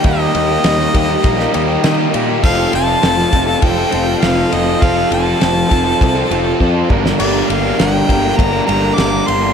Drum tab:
CC |----------------|x---------------|----------------|x---------------|
RD |x-x-x-x-x-x-x-x-|--x-x-x-x-x-x-x-|x-x-x-x-x-x-----|x-x-x-x-x-x-x-x-|
SD |----oo---o--o---|----oo------o---|----o----------o|----o-------o---|
BD |o-----o-o-------|o-----o-o-------|o-----o-o---o-o-|------o-o-------|